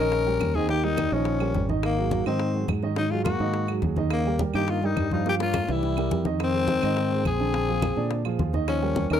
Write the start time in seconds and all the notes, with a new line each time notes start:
Already playing: A#1 C#4
0.00 D#3 D#4 A#4 D#5
0.12 high bongo, high conga
0.27 G3 G4 A#4, high bongo, high conga
0.40 D#2, high bongo, low bongo, high conga, claves
0.55 D#3 C4 D#4 G#4 D#5, high bongo, high conga
0.69 D#3 A#3 D#4 G4 D#5, high bongo, high conga
0.83 G3 D#4 G4 A#4, high conga
0.97 high bongo, high conga, claves
1.11 A#1 D#3 F3 C#4 D#4 D#5, high bongo
1.25 high bongo, high conga
1.40 G3 G4 A#4, high bongo, high conga, claves
1.54 G#1 G3 G4 A#4, high bongo, low bongo, high conga
1.68 D#3 D#4 D#5, high bongo, high conga
1.83 D#3 A#3, high bongo, high conga, claves
1.97 F#3 F#4 G#4, high conga
2.11 F#3 F#4 G#4, high bongo, high conga
2.25 G#2 D#3 C4 D#4 D#5, high bongo, high conga, claves
2.40 high bongo, high conga
2.54 F#3 F#4 G#4, high bongo, high conga
2.68 G#2, high bongo, low bongo, high conga, claves
2.83 D#3 D#4 D#5, high bongo
2.96 D#3 F#3 D#4 D#5, high bongo, high conga
3.08 F#3 G#3 F4 F#4 G#4, high conga
3.24 A#3 F#4, high bongo, high conga, claves
3.39 G#2 D#3 D#4 D#5, high bongo
3.54 high bongo, high conga
3.67 F#3 F#4 G#4, high bongo, high conga, claves
3.82 D#2 F#3 F#4 G#4, high bongo, low bongo, high conga
3.96 D#3 D#4 D#5, high bongo, high conga
4.10 C#3 A#3, high bongo, high conga, claves
4.25 G3 G4 A#4, high conga
4.39 G3 G4 A#4, high bongo, high conga
4.54 G2 D#3 A#3 D#4 G4 D#5, high bongo, high conga, claves
4.68 A#3 F4, high bongo, high conga
4.82 G3 D#4 G4 A#4, high bongo, high conga
4.97 G2, high bongo, low bongo, high conga, claves
5.11 F3 G3 D#4 F4 F5, high bongo, high conga
5.25 F3 A#3 F4 G4 F5, high bongo, high conga
5.40 A#3 F4 A#4 C#5, high bongo, high conga
5.54 high bongo, high conga, claves
5.67 C2 E3 G3 E4 E5, low bongo
5.72 E4
5.82 low bongo, high conga
5.97 G3 G4 A#4, low bongo, high conga, claves
6.11 F2 G3 G4 A#4, low bongo, high conga
6.25 D#3 D#4 D#5, low bongo, high conga
6.39 D#3, high bongo, high conga, claves
6.43 C4
6.53 G#3 G#4 C5, high conga
6.68 G#3 G#4 C5, high bongo, high conga
6.82 G#2 D#3 D#4 D#5, high bongo, high conga, claves
6.97 high bongo, high conga
7.11 G#3 G#4 C5, high bongo, high conga
7.25 A#1 C4 G#4, high bongo, low bongo, high conga, claves
7.40 D3 D4 D5, high bongo
7.54 D3 D4 D5, high bongo, high conga
7.68 F3 F4 G#4, high conga
7.82 high bongo, high conga, claves
7.96 A#2 D3 D4 D5, high bongo
8.11 high bongo, high conga
8.25 F3 F4 G#4, high bongo, high conga, claves
8.39 D#2 F3 F4 G#4, high bongo, low bongo, high conga
8.53 D#3 D#4 D#5, high bongo, high conga
8.68 F3 C#4, high bongo, high conga, claves
8.82 G3 G4 A#4, high conga
8.96 G3 G4 A#4, high bongo, high conga
9.10 D#2 D#3 C#4 D#4 A#4 D#5, high bongo, high conga, claves